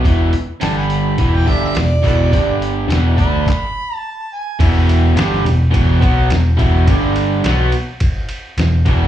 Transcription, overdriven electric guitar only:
0, 0, Header, 1, 3, 480
1, 0, Start_track
1, 0, Tempo, 568182
1, 32, Time_signature, 4, 2, 24, 8
1, 7668, End_track
2, 0, Start_track
2, 0, Title_t, "Overdriven electric guitar"
2, 0, Program_c, 0, 29
2, 27, Note_on_c, 0, 40, 79
2, 32, Note_on_c, 0, 47, 92
2, 45, Note_on_c, 0, 52, 100
2, 263, Note_off_c, 0, 40, 0
2, 266, Note_off_c, 0, 47, 0
2, 272, Note_off_c, 0, 52, 0
2, 515, Note_on_c, 0, 43, 77
2, 522, Note_on_c, 0, 50, 89
2, 525, Note_on_c, 0, 55, 108
2, 990, Note_off_c, 0, 43, 0
2, 994, Note_off_c, 0, 50, 0
2, 995, Note_off_c, 0, 55, 0
2, 1000, Note_on_c, 0, 40, 97
2, 1002, Note_on_c, 0, 47, 84
2, 1008, Note_on_c, 0, 52, 96
2, 1230, Note_off_c, 0, 47, 0
2, 1232, Note_off_c, 0, 40, 0
2, 1234, Note_on_c, 0, 50, 90
2, 1236, Note_off_c, 0, 52, 0
2, 1236, Note_on_c, 0, 43, 88
2, 1243, Note_on_c, 0, 55, 89
2, 1470, Note_off_c, 0, 50, 0
2, 1471, Note_off_c, 0, 43, 0
2, 1475, Note_off_c, 0, 55, 0
2, 1485, Note_on_c, 0, 40, 60
2, 1485, Note_on_c, 0, 47, 60
2, 1675, Note_off_c, 0, 40, 0
2, 1675, Note_off_c, 0, 47, 0
2, 1716, Note_on_c, 0, 40, 97
2, 1722, Note_on_c, 0, 47, 94
2, 1726, Note_on_c, 0, 52, 97
2, 1952, Note_off_c, 0, 40, 0
2, 1955, Note_off_c, 0, 47, 0
2, 1957, Note_off_c, 0, 52, 0
2, 1961, Note_on_c, 0, 50, 90
2, 1964, Note_on_c, 0, 43, 82
2, 1967, Note_on_c, 0, 55, 90
2, 2428, Note_off_c, 0, 43, 0
2, 2431, Note_off_c, 0, 50, 0
2, 2431, Note_on_c, 0, 40, 88
2, 2434, Note_off_c, 0, 55, 0
2, 2435, Note_on_c, 0, 47, 83
2, 2438, Note_on_c, 0, 52, 96
2, 2664, Note_off_c, 0, 47, 0
2, 2668, Note_on_c, 0, 50, 83
2, 2670, Note_off_c, 0, 40, 0
2, 2673, Note_off_c, 0, 52, 0
2, 2676, Note_on_c, 0, 57, 84
2, 2677, Note_on_c, 0, 62, 90
2, 2908, Note_off_c, 0, 50, 0
2, 2913, Note_off_c, 0, 57, 0
2, 2913, Note_off_c, 0, 62, 0
2, 3882, Note_on_c, 0, 40, 81
2, 3888, Note_on_c, 0, 47, 87
2, 3890, Note_on_c, 0, 52, 101
2, 4348, Note_off_c, 0, 40, 0
2, 4351, Note_on_c, 0, 43, 90
2, 4358, Note_off_c, 0, 47, 0
2, 4358, Note_off_c, 0, 52, 0
2, 4361, Note_on_c, 0, 55, 91
2, 4363, Note_on_c, 0, 50, 85
2, 4590, Note_off_c, 0, 43, 0
2, 4595, Note_off_c, 0, 55, 0
2, 4596, Note_off_c, 0, 50, 0
2, 4597, Note_on_c, 0, 40, 62
2, 4599, Note_on_c, 0, 47, 66
2, 4791, Note_off_c, 0, 40, 0
2, 4792, Note_off_c, 0, 47, 0
2, 4820, Note_on_c, 0, 40, 89
2, 4820, Note_on_c, 0, 47, 88
2, 4827, Note_on_c, 0, 52, 106
2, 5060, Note_off_c, 0, 47, 0
2, 5063, Note_off_c, 0, 40, 0
2, 5067, Note_off_c, 0, 52, 0
2, 5070, Note_on_c, 0, 47, 91
2, 5078, Note_on_c, 0, 54, 84
2, 5078, Note_on_c, 0, 59, 93
2, 5302, Note_off_c, 0, 47, 0
2, 5310, Note_on_c, 0, 40, 61
2, 5312, Note_off_c, 0, 54, 0
2, 5312, Note_off_c, 0, 59, 0
2, 5312, Note_on_c, 0, 47, 74
2, 5507, Note_off_c, 0, 40, 0
2, 5508, Note_off_c, 0, 47, 0
2, 5549, Note_on_c, 0, 47, 109
2, 5552, Note_on_c, 0, 40, 91
2, 5555, Note_on_c, 0, 52, 102
2, 5787, Note_off_c, 0, 47, 0
2, 5788, Note_off_c, 0, 40, 0
2, 5790, Note_off_c, 0, 52, 0
2, 5802, Note_on_c, 0, 43, 91
2, 5811, Note_on_c, 0, 50, 90
2, 5814, Note_on_c, 0, 55, 94
2, 6272, Note_off_c, 0, 43, 0
2, 6277, Note_off_c, 0, 50, 0
2, 6278, Note_off_c, 0, 55, 0
2, 6287, Note_on_c, 0, 47, 94
2, 6293, Note_on_c, 0, 54, 86
2, 6296, Note_on_c, 0, 59, 99
2, 6515, Note_off_c, 0, 47, 0
2, 6517, Note_off_c, 0, 54, 0
2, 6519, Note_off_c, 0, 59, 0
2, 7252, Note_on_c, 0, 40, 64
2, 7257, Note_on_c, 0, 47, 70
2, 7434, Note_off_c, 0, 40, 0
2, 7437, Note_off_c, 0, 47, 0
2, 7481, Note_on_c, 0, 40, 104
2, 7490, Note_on_c, 0, 47, 99
2, 7492, Note_on_c, 0, 52, 111
2, 7668, Note_off_c, 0, 40, 0
2, 7668, Note_off_c, 0, 47, 0
2, 7668, Note_off_c, 0, 52, 0
2, 7668, End_track
3, 0, Start_track
3, 0, Title_t, "Muted overdriven electric guitar strokes"
3, 273, Note_on_c, 9, 29, 52
3, 358, Note_off_c, 9, 29, 0
3, 7668, End_track
0, 0, End_of_file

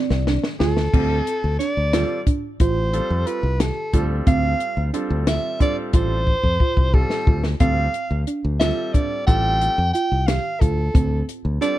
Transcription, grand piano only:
0, 0, Header, 1, 2, 480
1, 0, Start_track
1, 0, Key_signature, -1, "minor"
1, 0, Tempo, 667408
1, 672, Time_signature, 5, 3, 24, 8
1, 8477, End_track
2, 0, Start_track
2, 0, Title_t, "Grand piano"
2, 0, Program_c, 0, 0
2, 670, Note_on_c, 0, 55, 58
2, 670, Note_on_c, 0, 65, 56
2, 671, Note_on_c, 0, 60, 53
2, 671, Note_on_c, 0, 69, 64
2, 839, Note_off_c, 0, 55, 0
2, 839, Note_off_c, 0, 60, 0
2, 839, Note_off_c, 0, 65, 0
2, 839, Note_off_c, 0, 69, 0
2, 1388, Note_on_c, 0, 55, 56
2, 1389, Note_on_c, 0, 60, 53
2, 1389, Note_on_c, 0, 65, 52
2, 1390, Note_on_c, 0, 69, 61
2, 1557, Note_off_c, 0, 55, 0
2, 1557, Note_off_c, 0, 60, 0
2, 1558, Note_off_c, 0, 65, 0
2, 1558, Note_off_c, 0, 69, 0
2, 2109, Note_on_c, 0, 55, 56
2, 2109, Note_on_c, 0, 60, 51
2, 2110, Note_on_c, 0, 65, 53
2, 2110, Note_on_c, 0, 69, 63
2, 2445, Note_off_c, 0, 55, 0
2, 2445, Note_off_c, 0, 60, 0
2, 2445, Note_off_c, 0, 65, 0
2, 2445, Note_off_c, 0, 69, 0
2, 2828, Note_on_c, 0, 55, 66
2, 2829, Note_on_c, 0, 65, 57
2, 2830, Note_on_c, 0, 60, 55
2, 2830, Note_on_c, 0, 69, 68
2, 3500, Note_off_c, 0, 55, 0
2, 3500, Note_off_c, 0, 65, 0
2, 3501, Note_off_c, 0, 60, 0
2, 3501, Note_off_c, 0, 69, 0
2, 3550, Note_on_c, 0, 55, 60
2, 3550, Note_on_c, 0, 60, 60
2, 3552, Note_on_c, 0, 65, 58
2, 3552, Note_on_c, 0, 69, 69
2, 4016, Note_off_c, 0, 55, 0
2, 4017, Note_off_c, 0, 60, 0
2, 4017, Note_off_c, 0, 65, 0
2, 4017, Note_off_c, 0, 69, 0
2, 4027, Note_on_c, 0, 55, 64
2, 4027, Note_on_c, 0, 65, 60
2, 4027, Note_on_c, 0, 69, 67
2, 4028, Note_on_c, 0, 60, 64
2, 4257, Note_off_c, 0, 55, 0
2, 4258, Note_off_c, 0, 65, 0
2, 4259, Note_off_c, 0, 60, 0
2, 4259, Note_off_c, 0, 69, 0
2, 4268, Note_on_c, 0, 55, 55
2, 4268, Note_on_c, 0, 65, 56
2, 4270, Note_on_c, 0, 60, 53
2, 4270, Note_on_c, 0, 69, 64
2, 4436, Note_off_c, 0, 55, 0
2, 4436, Note_off_c, 0, 65, 0
2, 4437, Note_off_c, 0, 60, 0
2, 4437, Note_off_c, 0, 69, 0
2, 4989, Note_on_c, 0, 65, 46
2, 4990, Note_on_c, 0, 55, 56
2, 4990, Note_on_c, 0, 69, 59
2, 4991, Note_on_c, 0, 60, 48
2, 5325, Note_off_c, 0, 55, 0
2, 5325, Note_off_c, 0, 65, 0
2, 5326, Note_off_c, 0, 60, 0
2, 5326, Note_off_c, 0, 69, 0
2, 5467, Note_on_c, 0, 55, 58
2, 5467, Note_on_c, 0, 60, 49
2, 5467, Note_on_c, 0, 65, 53
2, 5467, Note_on_c, 0, 69, 64
2, 5636, Note_off_c, 0, 55, 0
2, 5636, Note_off_c, 0, 60, 0
2, 5636, Note_off_c, 0, 65, 0
2, 5636, Note_off_c, 0, 69, 0
2, 6182, Note_on_c, 0, 55, 56
2, 6183, Note_on_c, 0, 65, 52
2, 6184, Note_on_c, 0, 60, 51
2, 6185, Note_on_c, 0, 69, 62
2, 6657, Note_off_c, 0, 60, 0
2, 6657, Note_off_c, 0, 65, 0
2, 6658, Note_off_c, 0, 55, 0
2, 6658, Note_off_c, 0, 69, 0
2, 6667, Note_on_c, 0, 65, 62
2, 6668, Note_on_c, 0, 60, 62
2, 6669, Note_on_c, 0, 55, 63
2, 6669, Note_on_c, 0, 69, 78
2, 7005, Note_off_c, 0, 60, 0
2, 7005, Note_off_c, 0, 65, 0
2, 7006, Note_off_c, 0, 55, 0
2, 7006, Note_off_c, 0, 69, 0
2, 8349, Note_on_c, 0, 55, 53
2, 8350, Note_on_c, 0, 60, 50
2, 8350, Note_on_c, 0, 65, 49
2, 8351, Note_on_c, 0, 69, 62
2, 8477, Note_off_c, 0, 55, 0
2, 8477, Note_off_c, 0, 60, 0
2, 8477, Note_off_c, 0, 65, 0
2, 8477, Note_off_c, 0, 69, 0
2, 8477, End_track
0, 0, End_of_file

